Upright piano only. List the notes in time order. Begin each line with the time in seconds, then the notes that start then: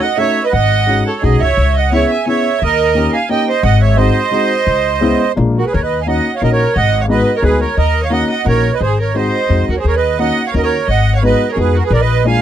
0.17 A3 C#4 D#4 F#4
0.87 G#3 C#4 D#4 F#4
1.22 G#3 C#4 D#4 F#4
1.92 B3 C#4 E4 G#4
2.26 B3 C#4 E4 G#4
2.95 A#3 C#4 D#4 G4
3.29 A#3 C#4 D#4 G4
3.96 G#3 C4 D#4 F#4
4.31 G#3 C4 D#4 F#4
5.01 G#3 B3 C#4 E4
5.36 G#3 A#3 D4 F4
6.06 A#3 C#4 D#4 F#4
6.41 A#3 C#4 D#4 F#4
7.08 G#3 B3 D#4 F#4
7.42 G#3 B3 D#4 F#4
8.10 A#3 C#4 D#4 F#4
8.44 A#3 C#4 D#4 F#4
9.14 G#3 C4 D#4 F#4
9.48 G#3 C4 D#4 F#4
10.19 A#3 C#4 D#4 F#4
10.54 A#3 C#4 D#4 F#4
11.22 G#3 B3 D#4 F#4
11.55 G#3 B3 D#4 F#4
12.24 G#3 A#3 D4 F4